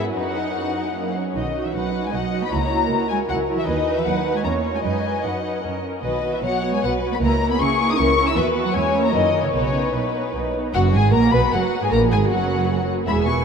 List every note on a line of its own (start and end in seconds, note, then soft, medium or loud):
0.00 0.10 G#2 medium
0.00 0.16 B3 soft
0.00 0.14 E4 medium
0.00 0.16 G#4 soft
0.15 0.50 F#2 soft
0.15 1.15 D#4 soft
0.15 0.34 F#4 soft
0.15 0.34 B4 soft
0.15 1.14 F#5 medium
0.37 0.56 D#4 soft
0.37 0.56 D#5 soft
0.55 0.90 F#2 soft
0.55 0.76 F#4 soft
0.55 0.76 B4 soft
0.76 0.96 D#4 soft
0.76 0.96 D#5 soft
0.95 1.30 F#2 soft
0.95 1.14 A#3 soft
0.95 1.14 A#4 soft
1.15 1.35 C#4 soft
1.15 1.35 C#5 soft
1.35 1.68 B1 soft
1.35 1.44 D#3 soft
1.35 1.53 D#4 soft
1.35 1.53 F#4 soft
1.35 1.63 D#5 soft
1.54 1.73 D#4 soft
1.54 1.73 F#4 soft
1.64 1.74 E3 soft
1.64 1.75 E5 soft
1.74 2.07 B1 soft
1.74 2.04 F#3 soft
1.74 1.94 D#4 soft
1.74 1.93 F#4 soft
1.74 2.11 B4 soft
1.74 2.03 F#5 medium
1.95 2.11 D#4 soft
1.95 2.11 F#4 soft
2.04 2.14 G#3 soft
2.04 2.14 G#5 medium
2.12 2.46 B1 medium
2.12 2.43 F#3 soft
2.12 2.31 D#4 soft
2.12 2.31 F#4 soft
2.12 2.52 D#5 soft
2.12 2.43 F#5 medium
2.32 2.51 D#4 soft
2.32 2.50 F#4 soft
2.43 2.52 B3 soft
2.43 2.53 B5 medium
2.51 2.84 C#2 medium
2.51 3.09 A#3 medium
2.51 2.70 E4 soft
2.51 2.70 F#4 soft
2.51 2.91 C#5 medium
2.51 3.10 A#5 medium
2.71 2.89 E4 soft
2.71 2.89 F#4 soft
2.90 3.22 C#2 medium
2.90 3.09 E4 soft
2.90 3.09 F#4 soft
2.90 3.65 A#4 medium
3.09 3.18 G#3 medium
3.09 3.28 E4 soft
3.09 3.28 F#4 soft
3.09 3.17 G#5 medium
3.29 3.61 C#2 medium
3.29 3.57 F#3 medium
3.29 3.47 E4 soft
3.29 3.48 F#4 soft
3.29 3.37 F#5 medium
3.49 3.67 E4 soft
3.49 3.67 F#4 soft
3.58 3.67 E3 soft
3.58 3.67 E5 medium
3.67 3.99 D#2 medium
3.67 3.96 D#3 medium
3.67 3.85 D#4 medium
3.67 4.44 B4 medium
3.67 3.86 B4 soft
3.67 3.95 D#5 medium
3.87 4.05 D#4 soft
3.87 4.05 B4 soft
3.97 4.06 E3 soft
3.97 4.06 E5 medium
4.05 4.39 D#2 medium
4.05 4.13 F#3 medium
4.05 4.25 D#4 soft
4.05 4.25 B4 soft
4.05 4.35 F#5 medium
4.26 4.45 D#4 soft
4.26 4.45 B4 soft
4.34 4.44 G#3 medium
4.34 4.40 G#5 medium
4.43 4.78 E2 medium
4.43 4.73 A#3 medium
4.43 4.63 C#4 soft
4.43 4.83 C#5 soft
4.43 4.63 C#5 soft
4.43 4.52 A#5 medium
4.64 4.83 C#4 soft
4.64 4.83 C#5 soft
4.74 4.83 G#3 soft
4.74 4.79 G#5 medium
4.83 5.17 F#2 soft
4.83 5.23 G#3 medium
4.83 5.02 D#4 soft
4.83 5.03 B4 soft
4.83 5.82 D#5 soft
4.83 5.23 G#5 medium
5.04 5.22 D#4 soft
5.04 5.22 B4 soft
5.23 5.58 F#2 soft
5.23 5.64 F#3 soft
5.23 5.42 D#4 soft
5.23 5.42 B4 soft
5.23 5.64 F#5 soft
5.43 5.63 D#4 soft
5.43 5.63 B4 soft
5.64 5.98 F#2 soft
5.64 5.83 C#4 soft
5.64 5.83 A#4 soft
5.84 6.04 C#4 soft
5.84 6.04 A#4 soft
6.03 6.37 B1 medium
6.03 6.32 D#3 soft
6.03 6.22 B3 soft
6.03 6.22 F#4 soft
6.03 6.41 B4 soft
6.03 6.32 D#5 medium
6.23 6.43 B3 soft
6.23 6.43 F#4 soft
6.34 6.44 E3 soft
6.34 6.44 E5 medium
6.43 6.77 B1 soft
6.43 6.73 F#3 medium
6.43 6.63 B3 soft
6.43 6.63 F#4 soft
6.43 6.83 C#5 medium
6.43 6.73 F#5 medium
6.64 6.82 B3 soft
6.64 6.82 F#4 soft
6.73 6.83 G#3 medium
6.73 6.83 G#5 medium
6.82 7.15 B1 medium
6.82 7.12 F#3 medium
6.82 7.02 B3 soft
6.82 7.02 F#4 soft
6.82 7.22 B4 medium
6.82 6.91 F#5 medium
7.03 7.22 B3 soft
7.03 7.22 F#4 soft
7.12 7.22 B3 medium
7.12 7.17 B5 medium
7.21 7.54 C#2 medium
7.21 7.29 A#3 medium
7.21 7.41 A#3 soft
7.21 7.41 E4 soft
7.21 7.59 A#4 medium
7.21 7.50 A#5 medium
7.42 7.59 A#3 soft
7.42 7.59 E4 soft
7.50 7.60 B3 medium
7.50 7.60 B5 medium
7.59 7.92 C#2 medium
7.59 7.79 A#3 soft
7.59 7.68 C#4 medium
7.59 7.79 E4 medium
7.59 7.97 G#4 medium
7.59 7.89 C#6 medium
7.80 7.97 A#3 medium
7.80 7.97 E4 soft
7.89 7.98 D#4 medium
7.89 7.99 D#6 medium
7.98 8.31 C#2 medium
7.98 8.17 A#3 medium
7.98 8.27 C#4 medium
7.98 8.16 E4 medium
7.98 8.36 A#4 medium
7.98 8.27 C#6 medium
8.17 8.36 A#3 soft
8.17 8.36 E4 soft
8.27 8.37 E4 medium
8.27 8.37 E6 medium
8.37 8.68 D#2 medium
8.37 8.65 E3 medium
8.37 8.54 B3 medium
8.37 8.55 F#4 medium
8.37 8.74 B4 medium
8.37 8.45 E5 medium
8.55 8.74 B3 medium
8.55 8.74 F#4 medium
8.64 8.74 F#3 soft
8.64 8.74 F#5 medium
8.74 9.07 E2 medium
8.74 9.03 G#3 medium
8.74 8.92 C#4 medium
8.74 8.92 E4 medium
8.74 9.12 C#5 medium
8.74 9.03 G#5 medium
8.93 9.12 C#4 medium
8.93 9.12 E4 soft
9.03 9.13 A#3 medium
9.03 9.13 A#5 medium
9.13 9.46 F#2 medium
9.13 9.43 D#3 medium
9.13 9.32 A#3 soft
9.13 9.32 E4 soft
9.13 9.53 A#4 medium
9.13 9.43 D#5 medium
9.33 9.53 A#3 soft
9.33 9.53 E4 soft
9.43 9.48 C#3 soft
9.43 9.52 C#5 soft
9.53 9.87 B1 medium
9.53 9.93 C#3 medium
9.53 9.73 B3 soft
9.53 9.73 D#4 soft
9.53 10.52 B4 soft
9.53 9.93 C#5 medium
9.74 9.92 B3 soft
9.74 9.93 D#4 soft
9.93 10.28 B1 soft
9.93 10.34 B2 soft
9.93 10.13 B3 soft
9.93 10.12 D#4 soft
9.93 10.34 B4 soft
10.14 10.33 B3 soft
10.14 10.33 D#4 soft
10.34 10.68 B1 soft
10.34 10.54 B3 soft
10.34 10.54 D#4 soft
10.55 10.74 B3 soft
10.55 10.74 D#4 soft
10.74 10.93 F#1 medium
10.74 10.93 F#2 medium
10.74 10.93 F#3 medium
10.74 10.93 F#4 medium
10.74 10.82 F#5 medium
10.93 11.13 G#1 medium
10.93 11.14 G#2 medium
10.93 11.13 G#3 medium
10.93 11.13 G#4 medium
10.93 11.13 G#5 medium
11.13 11.33 A#1 medium
11.13 11.33 A#2 medium
11.13 11.33 A#3 medium
11.13 11.33 A#4 medium
11.13 11.33 A#5 medium
11.33 11.41 B1 medium
11.33 11.41 B2 medium
11.33 11.53 B3 medium
11.33 11.41 B4 medium
11.33 11.52 B5 medium
11.53 11.61 F#1 medium
11.53 11.61 F#2 medium
11.53 11.82 F#3 medium
11.53 11.82 F#4 medium
11.53 11.82 F#5 medium
11.81 11.86 G#2 medium
11.81 11.91 G#3 medium
11.81 11.92 G#4 medium
11.81 11.92 G#5 medium
11.91 12.11 A#1 medium
11.91 12.10 A#2 medium
11.91 11.99 A#3 medium
11.91 12.11 A#4 medium
11.91 11.99 A#5 medium
12.11 12.30 G#1 medium
12.11 12.30 G#2 medium
12.11 12.19 G#3 medium
12.11 12.30 G#4 medium
12.11 12.19 G#5 medium
12.30 12.88 F#1 medium
12.30 12.88 F#2 medium
12.30 12.87 F#3 medium
12.30 12.88 F#4 medium
12.30 12.87 F#5 medium
13.06 13.41 E1 medium
13.06 13.41 E2 medium
13.06 13.25 G#3 medium
13.06 13.25 G#4 soft
13.06 13.25 E5 soft
13.06 13.16 B5 medium
13.26 13.45 B3 soft
13.26 13.45 E4 soft
13.26 13.45 B4 soft
13.26 13.45 G#5 soft
13.26 13.45 C#6 medium